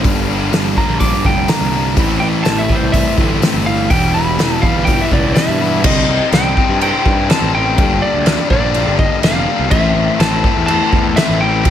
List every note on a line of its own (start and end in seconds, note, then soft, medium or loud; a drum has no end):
0.04 0.49 G1 medium
0.04 0.27 G2 loud
0.04 0.28 D3 loud
0.04 0.28 G3 loud
0.04 0.28 A#3 medium
0.04 0.29 D4 loud
0.04 kick loud
0.04 open hi-hat medium
0.28 0.51 G2 medium
0.28 0.52 D3 medium
0.28 0.53 G3 medium
0.28 0.53 A#3 medium
0.28 0.53 D4 medium
0.52 0.75 G1 medium
0.52 0.76 G2 medium
0.52 0.76 D3 loud
0.52 0.77 G3 loud
0.52 0.77 A#3 loud
0.52 0.78 D4 loud
0.52 snare loud
0.52 open hi-hat medium
0.77 0.99 G2 medium
0.77 1.00 D3 medium
0.77 1.00 G3 medium
0.77 1.00 A#3 medium
0.77 1.01 D4 medium
0.77 1.00 A#5 medium
0.77 kick medium
0.88 1.11 A#1 medium
1.00 1.23 G2 loud
1.00 1.24 D3 medium
1.00 1.25 G3 loud
1.00 1.25 A#3 loud
1.00 1.25 D4 medium
1.00 1.25 D6 loud
1.00 kick medium
1.00 open hi-hat medium
1.24 1.47 F1 medium
1.24 1.48 G2 medium
1.24 1.48 D3 medium
1.24 1.49 G3 medium
1.24 1.49 A#3 medium
1.24 1.50 D4 loud
1.24 1.50 G5 medium
1.24 kick medium
1.48 1.72 G2 medium
1.48 1.72 D3 medium
1.48 1.73 G3 medium
1.48 1.73 A#3 loud
1.48 1.74 D4 medium
1.48 1.94 A#5 medium
1.48 snare loud
1.48 open hi-hat medium
1.61 1.95 C2 medium
1.73 1.96 G2 medium
1.73 1.96 D3 medium
1.73 1.96 G3 medium
1.73 1.97 A#3 medium
1.73 1.97 D4 medium
1.96 2.42 A1 medium
1.96 2.20 A2 loud
1.96 2.22 E3 loud
1.96 2.21 A3 loud
1.96 2.21 C4 loud
1.96 2.22 E4 loud
1.96 kick loud
1.96 open hi-hat medium
2.20 2.44 A2 medium
2.20 2.46 E3 medium
2.20 2.45 A3 loud
2.20 2.46 C4 medium
2.20 2.47 E4 medium
2.20 2.27 G5 medium
2.43 2.68 A1 medium
2.43 2.70 A2 loud
2.43 2.70 E3 loud
2.43 2.70 A3 loud
2.43 2.71 C4 loud
2.43 2.71 E4 loud
2.43 2.61 A5 loud
2.43 snare loud
2.43 open hi-hat medium
2.59 2.75 E5 medium
2.69 2.92 A2 medium
2.69 2.93 E3 medium
2.69 2.93 A3 loud
2.69 2.93 C4 medium
2.69 2.94 E4 medium
2.69 kick medium
2.75 2.93 C5 medium
2.82 3.04 C2 medium
2.92 3.17 A2 medium
2.92 3.17 E3 loud
2.92 3.17 A3 loud
2.92 3.18 C4 loud
2.92 3.18 E4 loud
2.92 3.16 E5 medium
2.92 kick loud
2.92 open hi-hat medium
3.18 3.40 G1 medium
3.18 3.41 A2 medium
3.18 3.41 E3 loud
3.18 3.42 A3 medium
3.18 3.42 C4 loud
3.18 3.42 E4 medium
3.18 kick medium
3.42 3.65 A2 medium
3.42 3.66 E3 loud
3.42 3.66 A3 medium
3.42 3.66 C4 loud
3.42 3.67 E4 loud
3.42 snare loud
3.42 open hi-hat medium
3.54 3.88 G1 medium
3.66 3.89 A2 medium
3.66 3.90 E3 medium
3.66 3.90 A3 medium
3.66 3.90 C4 medium
3.66 3.90 E4 medium
3.66 3.89 F5 medium
3.89 4.35 E1 loud
3.89 4.13 E2 loud
3.89 4.14 B2 loud
3.89 4.14 E3 loud
3.89 4.15 G3 loud
3.89 4.15 B3 loud
3.89 4.15 E4 loud
3.89 4.15 G5 loud
3.89 kick loud
3.89 open hi-hat medium
4.14 4.36 E2 medium
4.14 4.37 B2 medium
4.14 4.39 E3 medium
4.14 4.40 G3 loud
4.14 4.40 B3 medium
4.14 4.40 E4 loud
4.14 4.64 B5 loud
4.37 4.61 E1 loud
4.37 4.61 E2 medium
4.37 4.61 B2 medium
4.37 4.62 E3 medium
4.37 4.63 G3 medium
4.37 4.63 B3 loud
4.37 snare loud
4.37 open hi-hat medium
4.41 4.64 E4 loud
4.62 4.86 E2 medium
4.62 4.87 B2 medium
4.62 4.87 E3 medium
4.62 4.87 G3 medium
4.62 4.88 B3 medium
4.62 4.88 E4 loud
4.62 4.87 F5 medium
4.62 kick medium
4.75 4.98 G1 medium
4.85 5.10 E2 loud
4.85 5.11 B2 loud
4.85 5.11 E3 medium
4.85 5.11 G3 medium
4.85 5.11 B3 medium
4.85 5.03 G5 loud
4.85 kick medium
4.85 open hi-hat medium
4.89 5.12 E4 medium
5.01 5.13 E5 medium
5.11 5.34 C#2 medium
5.11 5.35 E2 medium
5.11 5.35 B2 medium
5.11 5.34 E3 medium
5.11 5.35 G3 medium
5.11 5.36 B3 medium
5.11 5.36 E4 loud
5.11 5.34 D5 medium
5.11 kick medium
5.19 5.35 G5 medium
5.34 5.59 E2 loud
5.34 5.60 B2 loud
5.34 5.59 E3 medium
5.34 5.60 G3 medium
5.34 5.60 B3 loud
5.34 5.60 E4 loud
5.34 5.37 E5 medium
5.34 5.86 E5 medium
5.34 snare loud
5.34 open hi-hat medium
5.48 5.82 G2 medium
5.60 5.83 E2 medium
5.60 5.83 B2 medium
5.60 5.83 E3 medium
5.60 5.83 G3 medium
5.60 5.83 B3 medium
5.60 5.84 E4 medium
5.84 6.07 C2 loud
5.84 6.31 C3 loud
5.84 6.33 G3 loud
5.84 6.32 C4 loud
5.84 6.33 D#4 loud
5.84 6.30 D#5 loud
5.84 kick loud
5.84 crash loud
5.84 crash medium
6.08 6.19 C2 loud
6.32 6.55 C2 medium
6.32 6.56 C3 loud
6.32 6.57 G3 medium
6.32 6.57 C4 medium
6.32 6.57 D#4 loud
6.32 6.78 G5 loud
6.32 snare loud
6.32 crash medium
6.57 6.79 C3 medium
6.57 6.80 G3 medium
6.57 6.80 C4 medium
6.57 6.80 D#4 medium
6.57 kick medium
6.69 6.91 G2 medium
6.80 7.28 C3 loud
6.80 7.29 G3 medium
6.80 7.29 C4 loud
6.80 7.29 D#4 medium
6.80 7.30 G5 loud
6.80 crash medium
7.06 7.28 G2 medium
7.06 kick medium
7.29 7.53 C3 medium
7.29 7.53 G3 medium
7.29 7.53 C4 medium
7.29 7.54 D#4 loud
7.29 7.54 A5 loud
7.29 snare loud
7.29 crash medium
7.42 7.75 A1 medium
7.54 7.76 C3 medium
7.54 7.77 G3 medium
7.54 7.77 C4 medium
7.54 7.77 D#4 medium
7.54 8.04 G5 loud
7.78 8.00 G1 loud
7.78 8.24 G2 loud
7.78 8.25 D3 loud
7.78 8.25 G3 loud
7.78 8.26 A#3 loud
7.78 8.26 D4 loud
7.78 kick loud
7.78 crash medium
8.02 8.49 D5 loud
8.14 8.36 D2 medium
8.25 8.49 G2 medium
8.25 8.50 D3 loud
8.25 8.50 G3 medium
8.25 8.51 A#3 medium
8.25 8.51 D4 loud
8.25 snare loud
8.25 crash medium
8.50 8.84 A#1 medium
8.50 8.73 G2 medium
8.50 8.74 D3 medium
8.50 8.74 G3 medium
8.50 8.74 A#3 medium
8.50 8.75 D4 loud
8.50 8.95 D5 loud
8.50 kick medium
8.74 9.21 G2 medium
8.74 9.22 D3 loud
8.74 9.22 G3 loud
8.74 9.23 A#3 loud
8.74 9.23 D4 loud
8.74 crash medium
8.86 9.09 G1 medium
8.99 9.23 D#5 medium
8.99 kick medium
9.22 9.45 F1 loud
9.22 9.47 G2 medium
9.22 9.47 D3 medium
9.22 9.48 G3 medium
9.22 9.48 A#3 medium
9.22 9.48 D4 loud
9.22 9.71 F5 medium
9.22 snare loud
9.22 crash medium
9.48 9.70 G2 medium
9.48 9.70 D3 medium
9.48 9.71 G3 medium
9.48 9.71 A#3 medium
9.48 9.71 D4 medium
9.59 9.70 C2 medium
9.71 9.94 A1 loud
9.71 10.20 A2 loud
9.71 10.21 E3 loud
9.71 10.21 A3 loud
9.71 10.21 C4 loud
9.71 10.22 E4 loud
9.71 10.21 E5 loud
9.71 kick loud
9.71 crash medium
9.95 10.06 A1 loud
10.20 10.42 A1 loud
10.20 10.43 A2 medium
10.20 10.44 E3 medium
10.20 10.44 A3 medium
10.20 10.44 C4 loud
10.20 10.46 E4 loud
10.20 10.65 A5 loud
10.20 snare loud
10.20 crash medium
10.44 10.68 A2 medium
10.44 10.69 E3 medium
10.44 10.69 A3 medium
10.44 10.69 C4 loud
10.44 10.70 E4 loud
10.44 kick medium
10.57 10.79 E2 medium
10.66 11.17 A2 loud
10.66 11.17 E3 loud
10.66 11.17 A3 loud
10.66 11.17 C4 loud
10.66 11.17 A5 loud
10.66 crash medium
10.71 11.18 E4 loud
10.92 11.15 E2 medium
10.92 kick medium
11.16 11.42 A2 medium
11.16 11.42 E3 medium
11.16 11.42 A3 medium
11.16 11.43 C4 medium
11.16 11.43 E4 loud
11.16 11.41 E5 medium
11.16 snare loud
11.16 crash medium
11.29 11.63 A1 loud
11.41 11.65 A2 medium
11.41 11.65 E3 medium
11.41 11.65 A3 medium
11.41 11.65 C4 medium
11.41 11.65 E4 medium
11.41 11.70 G5 medium
11.65 11.70 E1 loud
11.65 11.70 E3 loud
11.65 11.70 G3 loud
11.65 kick loud
11.65 crash medium